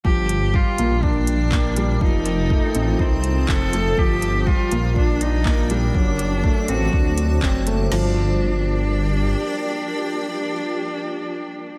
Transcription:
0.04 G1 F3 F4 G4 A#4 G5 D6, kick
0.29 closed hi-hat
0.54 G3 F4, kick
0.78 A#1 A#3, closed hi-hat
1.03 D4, kick
1.27 closed hi-hat
1.52 A#3, kick, clap
1.76 G3, closed hi-hat
2.01 F1 F3 D#4 C5 A5 D#6, kick
2.26 closed hi-hat
2.50 A3, kick
2.75 A1 C4, closed hi-hat
2.99 C2 C4 D#4, kick
3.24 closed hi-hat
3.48 F1 C4 A4, kick, clap
3.73 A3, closed hi-hat
3.98 G1 F3 F4 G4 A#4 G5 D6, kick
4.22 closed hi-hat
4.47 G3 F4, kick
4.71 A#1 A#3, closed hi-hat
4.96 D4, kick
5.21 D#4, closed hi-hat
5.45 A#3, kick, clap
5.70 G3 D4, closed hi-hat
5.94 F#1 F#3 F#4 C5 A5, kick
6.19 closed hi-hat
6.44 A3, kick
6.68 A1 C4 F#4, closed hi-hat
6.93 D2 D4, kick
7.18 closed hi-hat
7.42 F#1 C4, kick, clap
7.67 A3, closed hi-hat
7.91 G1 F3 D4 F4 G4 A#4 D5 G5, snare, crash

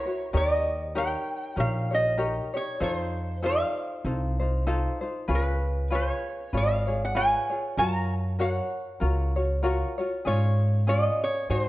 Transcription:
Already playing: C#5
0.05 E4 F#4 C#5
0.33 D#2 D#4 G4 A#4 C#5 D#5
0.95 D#4 G4 A#4 C#5 G5
1.56 A#1 D#4 G4 A#4 C#5 F5
1.91 D#4 G4 C#5 D#5
2.18 D#4 G4 A#4 C#5
2.54 D#4 G4 C#5
2.80 F2 D#4 F4 A4 C5 C#5
2.95 C5
3.42 D#4 F4 A4 C5 F5
4.05 C2 D#4 F4 A4 C5
4.40 D#4 F4 C5
4.67 D#4 F4 A4 C5
5.01 D#4 F4 C5
5.28 C#2 F4 G#4 B4 C#5
5.35 B4
5.90 F4 G#4 B4 C#5
5.95 C#5
6.53 G#1 F4 G#4 B4 C#5
6.57 F5
6.87 F4 G#4 C#5
7.05 F#5
7.15 F4 G#4 B4 C#5 G#5
7.50 F4 G#4 C#5
7.77 F#2 F4 F#4 A#4 C#5 A#5
8.39 F#4 A#4 C#5 F#5
9.00 C#2 F4 F#4 A#4 C#5
9.36 F4 F#4 C#5
9.63 F4 F#4 A#4 C#5
9.98 F4 F#4 C#5
10.25 G#2 C#4 F4 G#4 C#5
10.87 C#4 F4 G#4 C#5 D#5
11.24 C#5
11.50 G#2 D#4 F#4 G#4 C5

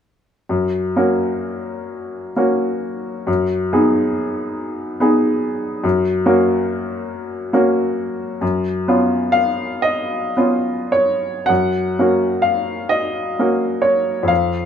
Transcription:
0.49 F#2
0.96 A#3 C#4 F#4
2.36 A#3 C#4 F#4
3.27 F#2
3.73 B3 D#4 G#4
5.00 B3 D#4 G#4
5.84 F#2
6.26 A#3 C#4 F#4
7.53 A#3 C#4 F#4
8.41 F#2
8.88 B3 C#4 F4
9.32 F5
9.82 D#5
10.37 B3 C#4 F4
10.92 C#5
11.46 F#2 F#5
11.99 A#3 C#4 F#4
12.42 F5
12.89 D#5
13.39 A#3 C#4 F#4
13.82 C#5
14.23 F2
14.28 F5

